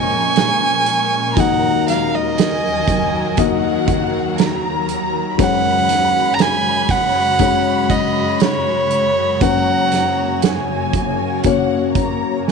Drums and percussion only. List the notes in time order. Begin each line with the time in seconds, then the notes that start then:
0.36 snare, closed hi-hat
0.86 closed hi-hat
1.37 kick, closed hi-hat
1.88 snare, closed hi-hat
2.38 snare, closed hi-hat
2.88 kick, closed hi-hat
3.37 kick, closed hi-hat
3.88 kick, closed hi-hat
4.38 snare, closed hi-hat
4.89 closed hi-hat
5.39 kick, closed hi-hat
5.89 snare, closed hi-hat
6.39 snare, closed hi-hat
6.89 kick, closed hi-hat
7.39 kick, closed hi-hat
7.90 kick, closed hi-hat
8.40 snare, closed hi-hat
8.90 closed hi-hat
9.41 kick, closed hi-hat
9.92 snare, closed hi-hat
10.42 snare, closed hi-hat
10.93 kick, closed hi-hat
11.43 kick, closed hi-hat
11.95 kick, closed hi-hat
12.48 snare